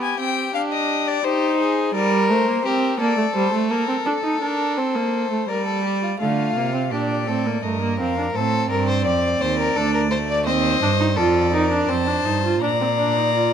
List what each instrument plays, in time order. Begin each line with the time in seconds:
Already playing: viola B3, violin G4
0.02 violin G#5
0.19 viola C4, violin G5
0.54 viola D4, violin F5
0.73 violin D#5
1.08 violin D5
1.25 viola D#4, violin G4 C5
1.60 violin G#4
1.94 viola G3, violin A#4 D5
2.30 viola A3, violin C5
2.48 viola A#3
2.65 viola C4, violin G4 A#4
3.00 viola A#3, violin A4 D5
3.17 viola A3
3.35 viola G3, violin C5
3.53 viola A3
3.70 viola A#3, violin A#4
3.88 viola C4
4.06 viola D4, violin A4
4.24 viola D#4
4.41 viola D4, violin A#4
4.77 viola C4, violin C5
4.95 viola A#3
5.30 viola A3
5.48 viola G3, violin A#4 D5
5.66 violin A4
5.84 violin G4
6.03 violin F4
6.20 cello D3, viola A3, violin F4 F5
6.56 cello C3, viola A#3
6.74 viola C4
6.91 cello A#2, viola D4, violin G4 D5
7.27 cello A2, viola C4, violin A4
7.46 viola A#3
7.63 cello G2, viola A3, violin A#4 D#5
7.82 viola A#3
7.99 cello F2, viola C4, violin F5
8.18 viola D4
8.35 cello A2, viola C4, violin A4 C5
8.70 cello G2, violin A#4 D5
8.89 violin C5
9.05 cello F2, violin D5
9.41 cello D#2, violin C5
9.59 violin A#4
9.76 cello D2, viola D4, violin A4
9.94 violin A#4
10.11 viola A3, violin C5
10.29 violin D5
10.46 cello D#2, viola C4, violin C5 D#5
10.81 cello G2, viola D4
11.00 viola D#4
11.17 cello F2, viola F4, violin A4 D5
11.53 viola D#4, violin A#4
11.71 viola D4
11.88 cello F2, viola C4, violin C5 A5
12.07 viola D4
12.25 cello G2, viola D#4
12.44 viola F4
12.61 cello A#2, viola D4, violin D5 A#5
12.80 viola C4
12.98 viola D4
13.17 viola D#4
13.35 viola F4